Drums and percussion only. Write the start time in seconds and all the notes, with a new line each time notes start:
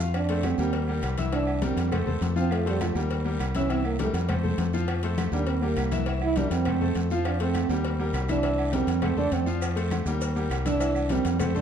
0.00 high conga, short guiro, maracas
0.14 cowbell, high conga, low agogo, long guiro, claves
0.29 cowbell, high conga
0.43 cowbell, high conga, low agogo, short guiro, claves
0.58 low agogo, short guiro
0.73 cowbell, high conga, long guiro
0.88 high conga, low agogo
1.03 cowbell, high conga, low timbale, low agogo, short guiro, claves
1.17 cowbell, high conga, short guiro
1.32 cowbell, high conga, low agogo, long guiro
1.47 high conga, low agogo, claves
1.62 cowbell, high conga, short guiro
1.77 cowbell, low agogo, short guiro
1.92 cowbell, high conga, low conga, low agogo, long guiro, claves
2.07 high conga, low conga
2.22 cowbell, high conga, low timbale, low agogo, short guiro
2.36 high conga, short guiro
2.51 cowbell, high conga, low agogo, long guiro, claves
2.67 cowbell, high conga
2.81 cowbell, high conga, low agogo, short guiro, claves
2.96 high conga, low agogo, short guiro
3.10 cowbell, high conga, long guiro
3.25 high conga, low agogo
3.40 cowbell, high conga, low timbale, low agogo, short guiro, claves
3.55 cowbell, high conga, short guiro
3.70 cowbell, high conga, low agogo, long guiro
3.85 high conga, low agogo, claves
3.99 cowbell, high conga, short guiro
4.14 cowbell, high conga, low agogo, short guiro
4.29 cowbell, high conga, low conga, low agogo, long guiro, claves
4.45 high conga, low conga
4.58 cowbell, high conga, low timbale, low agogo, short guiro
4.73 high conga, short guiro
4.88 cowbell, high conga, low agogo, long guiro, claves
5.03 cowbell, high conga
5.18 cowbell, high conga, low agogo, short guiro, claves
5.32 high conga, low agogo, short guiro
5.47 cowbell, high conga, long guiro
5.62 high conga, low agogo
5.77 cowbell, high conga, low agogo, short guiro, claves
5.92 cowbell, high conga, short guiro
6.06 cowbell, high conga, low agogo, long guiro
6.22 high conga, low agogo, claves
6.36 cowbell, high conga, short guiro
6.51 cowbell, high conga, low agogo, short guiro
6.65 cowbell, high conga, low conga, low agogo, long guiro, claves
6.82 high conga, low conga
6.95 cowbell, high conga, low agogo, short guiro
7.10 short guiro
7.25 cowbell, high conga, low agogo, long guiro, claves
7.40 cowbell, high conga
7.54 cowbell, high conga, low agogo, short guiro, claves
7.70 low agogo, short guiro
7.84 cowbell, high conga, long guiro
7.99 high conga, low agogo
8.14 cowbell, high conga, low timbale, low agogo, short guiro, claves
8.28 cowbell, high conga, short guiro
8.43 cowbell, high conga, low agogo, long guiro
8.58 high conga, low agogo, claves
8.73 cowbell, high conga, short guiro
8.87 cowbell, high conga, low agogo, short guiro
9.02 cowbell, high conga, low conga, low agogo, long guiro, claves
9.18 high conga, low conga
9.32 cowbell, high conga, low agogo, short guiro
9.46 high conga, short guiro
9.61 cowbell, high conga, low agogo, long guiro, claves, maracas
9.77 cowbell, high conga, maracas
9.91 cowbell, high conga, low agogo, short guiro, claves, maracas
10.06 high conga, low agogo, short guiro, maracas
10.21 cowbell, high conga, long guiro, maracas
10.36 high conga, low agogo, maracas
10.51 cowbell, high conga, low timbale, low agogo, short guiro, claves, maracas
10.66 cowbell, high conga, short guiro, maracas
10.80 cowbell, high conga, low agogo, long guiro, maracas
10.95 high conga, low agogo, claves, maracas
11.09 cowbell, high conga, short guiro, maracas
11.25 cowbell, high conga, low agogo, short guiro, maracas
11.39 cowbell, high conga, low conga, low agogo, long guiro, claves, maracas
11.56 high conga, low conga, maracas